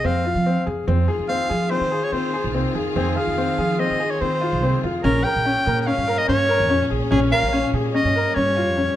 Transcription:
0.04 0.34 F2 medium
0.04 0.21 C4 medium
0.04 0.67 F5 medium
0.25 0.42 F4 medium
0.35 0.55 F3 medium
0.46 0.63 C4 medium
0.66 0.86 F2 medium
0.66 0.83 G#4 medium
0.86 1.07 F2 medium
0.86 4.99 D#3 medium
0.86 1.04 C4 medium
0.86 4.99 F4 medium
0.86 7.07 G#4 medium
1.08 1.25 G#4 medium
1.19 1.39 F2 medium
1.28 1.46 C4 medium
1.28 1.72 F5 medium
1.50 1.80 F3 medium
1.50 1.66 G#4 medium
1.71 1.87 C4 medium
1.71 2.05 C5 medium
1.81 2.01 D#3 medium
1.92 2.08 G#4 medium
2.03 2.14 C#5 medium
2.12 2.46 D#3 medium
2.12 2.29 C4 medium
2.12 2.54 C5 medium
2.34 2.50 G#4 medium
2.44 2.64 C2 medium
2.54 2.71 C4 medium
2.75 2.85 F2 medium
2.75 2.92 G#4 medium
2.95 3.15 F2 medium
2.95 3.12 C4 medium
2.95 3.18 G#4 medium
3.16 3.33 G#4 medium
3.16 3.81 F5 medium
3.28 3.47 F2 medium
3.38 3.54 C4 medium
3.58 3.88 F3 medium
3.58 3.75 G#4 medium
3.79 3.96 C4 medium
3.79 4.12 D#5 medium
3.91 4.10 D#3 medium
4.00 4.16 G#4 medium
4.10 4.22 C#5 medium
4.21 4.54 D#3 medium
4.21 4.37 C4 medium
4.21 4.83 C5 medium
4.41 4.58 F4 medium
4.52 4.72 C2 medium
4.63 4.79 C4 medium
4.84 4.93 F2 medium
4.84 5.00 F4 medium
5.03 5.24 A#1 loud
5.03 8.96 A#2 medium
5.03 5.21 C#4 medium
5.03 8.96 C#4 medium
5.03 5.25 A#4 medium
5.24 5.41 A#4 medium
5.24 5.80 G5 medium
5.36 5.55 A#1 medium
5.45 5.62 C#4 medium
5.66 5.96 A#2 medium
5.66 5.83 A#4 medium
5.80 5.88 G5 medium
5.86 6.03 C#4 medium
5.86 6.19 F5 medium
5.98 6.17 G2 medium
6.08 6.24 A#4 medium
6.18 6.28 D#5 medium
6.28 6.61 G2 medium
6.28 6.45 C#4 medium
6.28 6.87 C#5 medium
6.49 6.66 A#4 medium
6.60 6.79 F2 medium
6.70 6.86 C#4 medium
6.90 7.00 A#1 medium
6.90 7.07 G#4 medium
7.11 7.31 A#1 loud
7.11 8.96 G3 medium
7.11 7.28 C#4 medium
7.11 7.20 G#4 medium
7.32 7.48 A#4 medium
7.32 7.71 F5 medium
7.43 7.62 A#1 medium
7.53 7.69 C#4 medium
7.73 8.03 A#2 medium
7.73 7.91 G#4 medium
7.94 8.11 C#4 medium
7.94 8.36 D#5 medium
8.05 8.24 G2 medium
8.16 8.32 A#4 medium
8.35 8.68 G2 medium
8.35 8.52 C#4 medium
8.35 8.96 C#5 medium
8.57 8.73 F4 medium
8.68 8.87 F2 medium
8.77 8.94 C#4 medium

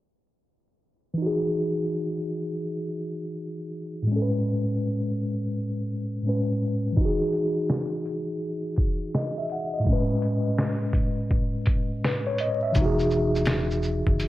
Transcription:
1.14 4.01 E3 medium
1.14 4.03 D#4 medium
1.22 4.06 F#4 medium
1.26 4.08 G#4 medium
4.02 6.18 A2 medium
4.07 6.20 G#3 medium
4.12 6.23 C#4 medium
4.16 4.20 A4 medium
4.22 6.28 B4 medium
6.23 6.96 A2 soft
6.23 6.97 G#3 soft
6.27 6.98 C#4 soft
6.27 6.99 B4 medium
6.93 9.80 E3 medium
6.97 9.82 D#4 medium
6.97 kick medium
7.01 9.84 F#4 medium
7.05 9.86 G#4 medium
7.33 closed hi-hat medium
7.70 snare loud
8.06 closed hi-hat medium
8.77 kick medium
8.77 closed hi-hat medium
9.15 9.36 D#5 medium
9.15 snare loud
9.38 9.50 E5 medium
9.49 9.73 F#5 medium
9.49 closed hi-hat medium
9.74 10.08 D#5 medium
9.80 12.68 A2 medium
9.84 12.70 G#3 medium
9.84 kick medium
9.88 12.72 C#4 medium
9.93 12.02 B4 medium
10.22 closed hi-hat medium
10.58 snare loud
10.93 kick medium
10.93 closed hi-hat medium
11.31 kick medium
11.66 kick medium
11.66 closed hi-hat medium
12.04 12.26 B4 medium
12.04 snare medium
12.26 12.39 C#5 medium
12.38 12.61 D#5 medium
12.38 closed hi-hat medium
12.63 12.97 E5 medium
12.72 14.03 E1 loud
12.72 14.28 E3 medium
12.72 kick loud
12.72 closed hi-hat medium
12.72 shaker medium
12.77 14.28 D#4 medium
12.81 14.28 F#4 medium
12.85 14.28 G#4 medium
12.99 shaker soft
13.10 shaker soft
13.35 shaker soft
13.45 snare loud
13.45 closed hi-hat medium
13.45 shaker medium
13.71 shaker soft
13.83 shaker soft
14.07 14.19 F#1 medium
14.07 kick medium
14.20 closed hi-hat medium
14.20 shaker medium

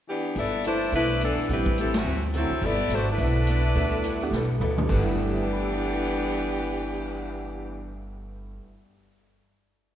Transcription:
0.08 0.35 E3 medium
0.08 0.34 B3 medium
0.08 0.35 D4 medium
0.08 0.35 G4 medium
0.35 0.90 G1 medium
0.35 0.54 G3 soft
0.35 0.55 B3 soft
0.35 0.65 B3 medium
0.35 0.55 E4 soft
0.35 0.65 E4 medium
0.35 0.65 A4 medium
0.35 0.55 A4 soft
0.35 0.65 D5 medium
0.35 kick soft
0.35 open hi-hat soft
0.64 0.83 G3 soft
0.64 0.92 A3 medium
0.64 0.83 B3 medium
0.64 0.91 D4 medium
0.64 0.83 E4 medium
0.64 0.92 E4 medium
0.64 0.84 A4 medium
0.64 0.92 C5 medium
0.64 closed hi-hat soft
0.81 open hi-hat soft
0.92 1.34 B1 medium
0.92 1.11 G3 soft
0.92 1.35 A3 soft
0.92 1.20 A3 medium
0.92 1.35 B3 soft
0.92 1.11 B3 soft
0.92 1.35 D4 soft
0.92 1.20 D4 medium
0.92 1.35 E4 medium
0.92 1.20 E4 medium
0.92 1.12 E4 medium
0.92 1.12 A4 medium
0.92 1.20 B4 loud
0.92 kick soft
0.92 open hi-hat soft
1.21 1.48 E3 medium
1.21 1.39 G3 medium
1.21 1.40 B3 medium
1.21 1.48 B3 medium
1.21 1.48 D4 medium
1.21 1.40 E4 medium
1.21 1.48 A4 medium
1.21 1.40 A4 medium
1.21 closed hi-hat medium
1.37 muted upright bass stroke soft
1.37 open hi-hat soft
1.49 2.03 A1 medium
1.49 1.65 G3 medium
1.49 1.79 G3 medium
1.49 1.67 A3 soft
1.49 1.65 B3 soft
1.49 1.65 C4 soft
1.49 1.68 C4 soft
1.49 1.79 C4 medium
1.49 1.65 E4 medium
1.49 1.79 E4 medium
1.49 1.68 G4 soft
1.49 1.69 B4 soft
1.49 1.79 B4 medium
1.49 kick soft
1.49 open hi-hat soft
1.66 kick medium
1.78 1.95 G3 medium
1.78 1.96 A3 medium
1.78 1.96 C4 medium
1.78 1.95 C4 medium
1.78 1.94 E4 medium
1.78 1.96 G4 medium
1.78 1.95 A4 medium
1.78 1.97 B4 medium
1.78 closed hi-hat soft
1.94 2.24 E3 medium
1.94 2.24 A3 medium
1.94 2.24 C4 medium
1.94 2.24 F#4 medium
1.94 snare medium
1.94 ride medium
2.05 2.47 D2 medium
2.05 2.24 D3 soft
2.05 2.24 F#3 soft
2.05 2.25 C4 medium
2.05 2.25 E4 medium
2.34 2.52 D3 medium
2.34 2.50 F#3 medium
2.34 2.53 F#3 medium
2.34 2.62 F#3 medium
2.34 2.50 A3 soft
2.34 2.50 C4 soft
2.34 2.53 C4 medium
2.34 2.61 C4 medium
2.34 2.50 E4 medium
2.34 2.53 E4 medium
2.34 2.62 E4 medium
2.34 2.61 A4 medium
2.34 closed hi-hat soft
2.50 muted upright bass stroke soft
2.62 2.88 G1 medium
2.62 2.81 G3 medium
2.62 2.81 B3 soft
2.62 2.92 B3 medium
2.62 2.81 E4 soft
2.62 2.92 E4 medium
2.62 2.92 A4 medium
2.62 2.82 A4 medium
2.62 2.92 D5 loud
2.62 kick soft
2.62 open hi-hat soft
2.89 3.16 G#1 medium
2.89 3.09 G3 medium
2.89 3.09 A3 medium
2.89 3.09 B3 medium
2.89 3.10 E4 medium
2.89 3.10 A4 medium
2.89 3.09 C5 medium
2.89 closed hi-hat medium
2.94 3.09 D4 medium
2.94 3.09 F#4 medium
3.11 4.59 A3 medium
3.11 4.59 D4 medium
3.11 4.59 E4 medium
3.11 4.59 B4 medium
3.18 3.72 B1 medium
3.18 3.37 G3 soft
3.18 3.61 A3 soft
3.18 3.61 B3 soft
3.18 3.38 B3 soft
3.18 3.62 D4 soft
3.18 3.62 E4 medium
3.18 3.38 E4 medium
3.18 3.38 A4 soft
3.18 kick soft
3.18 open hi-hat soft
3.47 3.66 G3 medium
3.47 3.66 B3 medium
3.47 3.66 E4 medium
3.47 3.67 A4 medium
3.47 closed hi-hat medium
3.75 4.29 D2 medium
3.75 3.94 G3 medium
3.75 4.18 A3 medium
3.75 4.18 B3 medium
3.75 3.95 B3 medium
3.75 4.19 D4 soft
3.75 4.19 E4 medium
3.75 3.95 E4 medium
3.75 3.95 A4 medium
3.75 kick soft
3.75 open hi-hat soft
4.04 4.22 G3 medium
4.04 4.23 B3 medium
4.04 4.23 E4 medium
4.04 4.23 A4 medium
4.04 closed hi-hat medium
4.21 4.32 A3 medium
4.21 4.32 B3 medium
4.21 4.32 D4 medium
4.21 4.32 G4 medium
4.21 open hi-hat soft
4.31 4.58 B1 medium
4.31 4.51 G3 medium
4.31 4.51 B3 soft
4.31 4.52 E4 medium
4.31 snare soft
4.35 4.52 A4 medium
4.60 4.87 D2 medium
4.60 4.79 G3 medium
4.60 4.80 B3 medium
4.60 4.80 E4 medium
4.60 4.80 A4 medium
4.60 floor tom medium
4.77 8.51 G2 medium
4.77 mid tom medium
4.83 8.56 G3 medium
4.87 8.58 G1 medium
4.87 8.61 G3 medium
4.87 8.63 A3 medium
4.87 7.94 D4 medium
4.87 kick medium
4.87 crash medium
4.91 7.94 E3 medium
4.91 7.94 B3 medium
4.91 8.65 B3 medium
4.91 8.68 E4 medium
4.91 7.94 G4 medium
4.96 8.69 B3 soft
4.96 8.71 A4 medium
5.02 8.74 E4 medium
5.07 cymbal swell soft
5.18 8.64 G4 soft
5.25 8.67 B4 soft
5.34 8.71 E5 soft
5.43 8.76 G5 soft
5.53 8.81 B5 soft
5.63 8.86 E6 soft
5.76 8.92 G6 soft

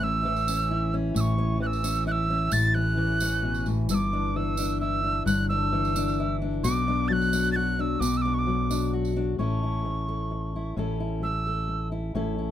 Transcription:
0.00 1.13 A1 medium
0.00 1.14 A2 medium
0.00 0.25 E3 medium
0.00 0.48 C#4 medium
0.00 0.71 E4 medium
0.00 0.94 E6 loud
0.25 1.60 E3 medium
0.37 tambourine soft
0.48 0.93 C#4 medium
0.48 tambourine medium
0.71 2.06 E4 medium
0.94 1.38 C#4 medium
1.14 2.50 A1 medium
1.14 2.49 A2 medium
1.14 1.22 E6 medium
1.14 tambourine loud
1.21 1.59 C#6 medium
1.38 1.83 C#4 medium
1.60 2.97 E3 medium
1.60 1.68 F#6 medium
1.67 2.04 E6 loud
1.73 tambourine soft
1.84 2.29 C#4 medium
1.84 tambourine medium
1.96 tambourine soft
2.07 4.16 E4 medium
2.07 2.13 F#6 medium
2.12 2.54 E6 loud
2.30 2.50 C#4 medium
2.51 3.87 A1 medium
2.51 3.66 A2 medium
2.51 2.76 A6 loud
2.51 tambourine loud
2.74 3.21 C#4 medium
2.74 3.66 F#6 loud
2.97 4.36 E3 medium
3.20 3.87 C#4 medium
3.20 tambourine loud
3.43 3.66 B2 medium
3.54 tambourine soft
3.66 3.89 A2 medium
3.66 tambourine soft
3.89 5.23 G1 medium
3.89 5.24 G2 medium
3.89 3.96 E6 medium
3.89 tambourine medium
3.95 4.38 D6 medium
4.13 4.59 D4 medium
4.36 5.71 E3 medium
4.36 4.80 E6 loud
4.57 5.04 D4 medium
4.57 tambourine medium
4.70 tambourine soft
4.81 5.24 E4 medium
4.81 5.23 E6 loud
5.04 5.50 D4 medium
5.26 6.61 G1 medium
5.26 6.60 G2 medium
5.26 5.48 F#6 loud
5.26 tambourine medium
5.49 5.96 D4 medium
5.49 6.37 E6 loud
5.73 6.64 E3 medium
5.85 tambourine soft
5.96 6.41 D4 medium
5.96 tambourine medium
6.08 tambourine soft
6.20 6.62 E4 medium
6.42 6.87 D4 medium
6.63 7.98 B1 medium
6.63 7.99 B2 medium
6.63 7.10 D6 loud
6.63 tambourine medium
6.88 7.33 D4 medium
7.08 7.99 F#3 medium
7.08 7.14 A6 loud
7.13 7.52 F#6 loud
7.22 tambourine soft
7.33 7.78 D4 medium
7.33 tambourine medium
7.45 tambourine soft
7.52 7.99 F#4 medium
7.52 7.77 F#6 loud
7.52 7.57 A6 loud
7.77 7.99 D4 medium
7.77 8.02 E6 loud
7.77 7.82 F#6 medium
8.00 9.36 B1 medium
8.00 9.38 B2 medium
8.00 8.18 D6 loud
8.00 tambourine medium
8.14 8.23 E6 loud
8.14 tambourine soft
8.22 8.69 D4 medium
8.22 8.35 D6 loud
8.34 8.40 C#6 loud
8.39 8.92 D6 loud
8.47 9.36 F#3 medium
8.71 9.15 D4 medium
8.71 tambourine medium
8.93 9.36 F#4 medium
9.05 tambourine soft
9.17 9.36 D4 medium
9.38 10.74 A1 medium
9.38 9.84 A2 medium
9.38 10.77 C#4 medium
9.38 9.63 E4 soft
9.38 10.08 A4 medium
9.38 10.73 C#6 loud
9.63 10.55 E4 soft
9.85 muted steel-string acoustic guitar stroke medium
10.09 10.78 A4 medium
10.31 muted steel-string acoustic guitar stroke medium
10.56 10.78 E4 soft
10.77 12.12 A1 medium
10.77 11.22 A2 medium
10.77 12.15 C#4 medium
10.77 11.00 E4 soft
10.77 11.46 A4 medium
11.00 11.91 E4 medium
11.22 11.88 E6 medium
11.22 muted steel-string acoustic guitar stroke medium
11.47 12.16 A4 medium
11.68 muted steel-string acoustic guitar stroke medium
11.92 12.16 E4 soft
12.15 12.51 A1 medium
12.15 12.51 A2 medium
12.15 12.51 C#4 medium
12.15 12.38 E4 medium
12.15 12.51 A4 medium
12.39 12.51 E4 soft

